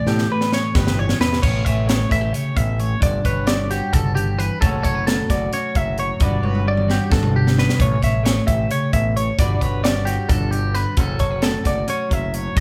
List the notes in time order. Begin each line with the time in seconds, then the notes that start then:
Already playing: A2 E3 A3
0.06 A2 G4, snare
0.18 snare
0.31 A3 B4
0.41 snare
0.52 C#5, snare
0.75 G1 G4 B4, kick, snare
0.87 snare
0.97 E3 C#5
1.09 snare
1.20 E2 B4, snare
1.33 snare
1.42 A1 A2 C#4 C#5, kick, crash
1.65 A1 C#5 E5, kick, closed hi-hat
1.86 A3 C#5, snare, closed hi-hat
2.09 A1 E4 E5, kick, snare, closed hi-hat
2.21 G4
2.32 C#3 C#5, closed hi-hat
2.55 A1 B2 E5, kick, closed hi-hat
2.77 A2 C#5, closed hi-hat
2.99 G1 G2 D4 D5, kick, closed hi-hat
3.25 G1 B4 C#5, kick, closed hi-hat
3.47 G3 D5, snare, closed hi-hat
3.71 F#4 G4, snare, closed hi-hat
3.92 G1 C#3 A4, kick, closed hi-hat
4.15 D3 G4, closed hi-hat
4.37 E3 B4, closed hi-hat
4.60 F#1 F#3 A3 C#4 F#4 A4 C#5, kick, closed hi-hat
4.82 F#1 A4 C#5, kick, closed hi-hat
4.95 B4
5.07 A3 A4, snare, closed hi-hat
5.30 F#1 F#4 D5, kick, snare, closed hi-hat
5.53 C#4 C#5, closed hi-hat
5.75 F#1 F#3 E5, kick, closed hi-hat
5.98 C#5, closed hi-hat
6.20 G1 G2 G3 D4 F#4 B4 D5, kick, closed hi-hat
6.42 G1 B4 C#5, high tom
6.55 high tom
6.66 G3 D5
6.77 mid tom
6.88 F#4 G4, snare
7.10 G1 D4 A4, kick, snare
7.23 mid tom
7.33 D3 G4
7.47 snare
7.58 B4, snare
7.69 snare
7.77 A1 A2 C#4, kick, closed hi-hat
7.81 C#5
8.02 A1 C#5 E5, kick, snare, closed hi-hat
8.23 A3 C#5, snare, closed hi-hat
8.47 A1 G4 E5, kick, closed hi-hat
8.70 C#3 C#5, closed hi-hat
8.93 A1 B2 E5, kick, closed hi-hat
9.16 A2 C#5, closed hi-hat
9.38 G1 G2 G3 D4 F#4 B4 D5, kick, closed hi-hat
9.61 G1 B4 C#5, kick, closed hi-hat
9.84 G3 D5, snare, closed hi-hat
10.05 F#4 G4, snare, closed hi-hat
10.29 G1 D4 A4, kick, closed hi-hat
10.50 D3 G4, closed hi-hat
10.75 B4, snare, closed hi-hat
10.97 F#1 F#3 C#4 A4, kick, closed hi-hat
11.19 F#1 A4 C#5, kick, closed hi-hat
11.31 B4
11.42 A3 A4, snare, closed hi-hat
11.64 F#1 F#4 D5, kick, snare, closed hi-hat
11.88 C#4 C#5, closed hi-hat
12.10 F#1 F#3 E5, kick, closed hi-hat
12.34 C#5, closed hi-hat
12.55 G1 G2 D4, kick, closed hi-hat